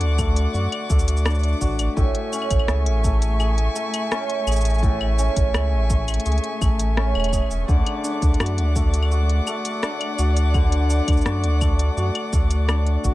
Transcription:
Already playing: hammered dulcimer D3 A3 D4 F#4, string quartet A3 D5 F#5 D6
0.01 sub bass D2, closed hi-hat
0.18 hammered dulcimer A3, kick, claves, shaker
0.36 closed hi-hat, shaker
0.54 sub bass F#2, hammered dulcimer F#4, shaker
0.72 closed hi-hat, claves
0.90 sub bass D2, hammered dulcimer A3, kick, shaker
0.99 shaker
1.08 closed hi-hat, shaker
1.17 shaker
1.25 hammered dulcimer D4, cross-stick, claves, shaker
1.30 shaker
1.35 shaker
1.39 shaker
1.43 closed hi-hat, shaker
1.48 shaker
1.52 shaker
1.57 shaker
1.61 sub bass A1, hammered dulcimer F#4, kick, shaker
1.79 closed hi-hat, claves, shaker
1.97 sub bass A1, hammered dulcimer A2, string quartet E5 G#5 C#6, kick, shaker
2.15 closed hi-hat
2.32 hammered dulcimer C#4, claves, shaker
2.42 claves
2.51 sub bass A1, kick, closed hi-hat, claves, shaker
2.59 claves
2.68 sub bass C#2, hammered dulcimer G#4, cross-stick, shaker
2.86 sub bass A1, closed hi-hat, claves
3.04 hammered dulcimer A3, kick, shaker
3.22 closed hi-hat, shaker
3.40 hammered dulcimer G#4, claves, shaker
3.58 closed hi-hat
3.76 hammered dulcimer A3, shaker
3.94 closed hi-hat, claves, shaker
4.11 hammered dulcimer C#4, cross-stick, shaker
4.30 closed hi-hat
4.47 sub bass A1, hammered dulcimer G#4, claves, shaker
4.52 shaker
4.56 shaker
4.61 shaker
4.65 closed hi-hat, shaker
4.70 shaker
4.74 shaker
4.79 shaker
4.83 hammered dulcimer A2, kick, shaker
5.01 claves
5.18 hammered dulcimer C#4, shaker
5.36 sub bass A1, kick, closed hi-hat, shaker
5.54 sub bass C#2, hammered dulcimer G#4, cross-stick, claves, shaker
5.72 sub bass A1
5.90 hammered dulcimer A3, kick, shaker
6.08 closed hi-hat, claves, shaker
6.14 closed hi-hat
6.20 closed hi-hat
6.25 sub bass C#2, hammered dulcimer G#4, closed hi-hat, shaker
6.32 closed hi-hat
6.38 closed hi-hat
6.44 closed hi-hat
6.61 sub bass A1, hammered dulcimer A3, kick, claves, shaker
6.79 closed hi-hat, shaker
6.97 hammered dulcimer C#4, cross-stick
7.15 sub bass E1, claves
7.20 claves
7.24 closed hi-hat, claves
7.29 hammered dulcimer G#4, claves
7.33 kick, claves, shaker
7.42 claves
7.46 claves
7.51 sub bass E1, shaker
7.68 sub bass D2, hammered dulcimer D3, string quartet D5 F#5 D6, kick, shaker
7.86 closed hi-hat, claves
8.04 hammered dulcimer D4, shaker
8.22 sub bass D2, kick, closed hi-hat, shaker
8.34 closed hi-hat
8.40 sub bass F#2, hammered dulcimer F#4, cross-stick, claves, shaker
8.46 closed hi-hat
8.58 sub bass D2, closed hi-hat
8.76 hammered dulcimer A3, kick, shaker
8.94 closed hi-hat, shaker
9.02 claves
9.11 hammered dulcimer F#4, shaker
9.29 closed hi-hat
9.47 hammered dulcimer A3, claves, shaker
9.65 closed hi-hat, shaker
9.83 hammered dulcimer D4, cross-stick, shaker
10.01 closed hi-hat, claves
10.19 sub bass D2, hammered dulcimer F#4, shaker
10.37 closed hi-hat, shaker
10.54 hammered dulcimer D3, kick, claves, shaker
10.72 closed hi-hat
10.90 hammered dulcimer D4, shaker
11.08 sub bass D2, kick, closed hi-hat, claves, shaker
11.12 shaker
11.17 shaker
11.21 shaker
11.26 sub bass F#2, hammered dulcimer F#4, cross-stick, shaker
11.44 sub bass D2, closed hi-hat
11.61 hammered dulcimer A3, kick, claves, shaker
11.79 closed hi-hat, shaker
11.97 sub bass F#2, hammered dulcimer F#4, shaker
12.15 closed hi-hat, claves
12.33 sub bass D2, hammered dulcimer A3, kick, shaker
12.51 closed hi-hat, shaker
12.69 hammered dulcimer D4, cross-stick, claves, shaker
12.87 closed hi-hat
13.04 sub bass A1, hammered dulcimer F#4, kick, shaker

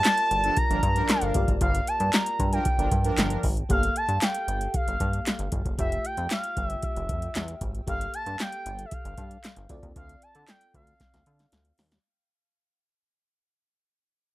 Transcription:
Already playing: fm electric piano A#3 F4 G4 A#4 D5, analog synth lead A5
0.04 snare, clap, closed hi-hat
0.18 closed hi-hat
0.31 analog synth bass G1, closed hi-hat
0.44 analog polysynth F3 D4 A4, closed hi-hat
0.57 analog synth lead A#5, kick, closed hi-hat
0.70 analog synth bass G1, analog polysynth F3 D4 A#4, closed hi-hat
0.83 analog synth bass G2, kick, closed hi-hat
0.96 analog polysynth F3 D4 A#4, closed hi-hat
1.09 analog synth lead F5, snare, clap, closed hi-hat
1.21 analog synth bass G1, closed hi-hat
1.34 analog synth bass G1, fm electric piano A#3 F4 G4 A#4 D5, kick, closed hi-hat
1.48 analog synth bass G#1, kick, closed hi-hat
1.61 analog synth bass G1, analog synth lead F5, kick, closed hi-hat
1.75 closed hi-hat
1.87 analog synth lead A5, closed hi-hat
2.00 analog synth bass G2, closed hi-hat
2.13 analog synth lead A#5, snare, clap, closed hi-hat
2.26 closed hi-hat
2.39 analog synth bass G2, kick, closed hi-hat
2.53 analog polysynth F3 D4 A#4, analog synth lead G5, closed hi-hat
2.65 kick, closed hi-hat
2.78 analog synth bass G1, analog polysynth F3 D4 A#4, closed hi-hat
2.91 analog synth bass G2, kick, closed hi-hat
3.04 analog polysynth F3 D4 A#4, closed hi-hat
3.18 analog synth bass G1, snare, clap, closed hi-hat
3.30 closed hi-hat
3.43 analog synth bass G#1, kick, open hi-hat
3.57 closed hi-hat
3.69 analog synth bass G1, fm electric piano A#3 G4 A4 F5, analog synth lead F5, kick, closed hi-hat
3.83 closed hi-hat
3.96 analog synth lead A5, closed hi-hat
4.09 analog synth bass G2, closed hi-hat
4.21 analog synth lead G5, snare, clap, closed hi-hat
4.35 closed hi-hat
4.48 analog synth bass G1, closed hi-hat
4.61 closed hi-hat
4.74 analog synth lead F5, kick, closed hi-hat
4.87 analog synth bass G1, closed hi-hat
5.00 analog synth bass G2, kick, closed hi-hat
5.13 closed hi-hat
5.26 snare, clap, closed hi-hat
5.39 analog synth bass G1, closed hi-hat
5.52 analog synth bass G1, kick, closed hi-hat
5.65 analog synth bass F#1, kick, closed hi-hat
5.78 analog synth bass F1, fm electric piano A3 F4 G4 G5, analog synth lead E5, kick, closed hi-hat
5.92 closed hi-hat
6.05 analog synth lead G5, closed hi-hat
6.17 analog synth bass F2, closed hi-hat
6.30 analog synth lead F5, snare, clap, closed hi-hat
6.44 closed hi-hat
6.57 analog synth bass G1, kick, closed hi-hat
6.67 analog synth lead E5, closed hi-hat
6.83 analog synth lead E5, kick, closed hi-hat
6.96 analog synth bass F1, closed hi-hat
7.09 analog synth bass F2, kick, closed hi-hat
7.22 closed hi-hat
7.35 analog synth bass E2, snare, clap, closed hi-hat
7.48 closed hi-hat
7.61 analog synth bass G#1, kick, closed hi-hat
7.75 closed hi-hat
7.87 analog synth bass G1, fm electric piano A#3 G4 A4 F5, analog synth lead F5, kick, closed hi-hat
8.01 closed hi-hat
8.14 analog synth lead A5, closed hi-hat
8.26 analog synth bass G2, closed hi-hat
8.39 analog synth lead G5, snare, clap, closed hi-hat
8.52 closed hi-hat
8.66 analog synth bass G1, closed hi-hat
8.79 closed hi-hat
8.85 analog synth lead E5
8.91 analog synth lead F5, kick, closed hi-hat
9.05 analog synth bass G1, closed hi-hat
9.18 analog synth bass G2, kick, closed hi-hat
9.31 closed hi-hat
9.44 snare, clap, closed hi-hat
9.56 analog synth bass G1, closed hi-hat
9.69 analog synth bass D2, fm electric piano C4 F4 A4 D5, kick, closed hi-hat
9.83 analog synth bass D#2, kick, closed hi-hat
9.96 analog synth bass D2, analog synth lead F5, kick, closed hi-hat
10.09 closed hi-hat
10.22 analog synth lead A5, closed hi-hat
10.35 analog synth bass D3, closed hi-hat
10.48 analog synth lead G5, snare, clap, closed hi-hat
10.61 closed hi-hat
10.74 analog synth bass D2, analog synth lead F5, kick, closed hi-hat
10.87 closed hi-hat
11.00 kick, snare, closed hi-hat
11.14 analog synth bass D2, snare, closed hi-hat
11.26 analog synth bass D3, closed hi-hat
11.39 snare, closed hi-hat
11.52 analog synth bass D2, snare, closed hi-hat
11.65 closed hi-hat
11.78 analog synth bass D#2, snare, open hi-hat
11.91 snare, closed hi-hat

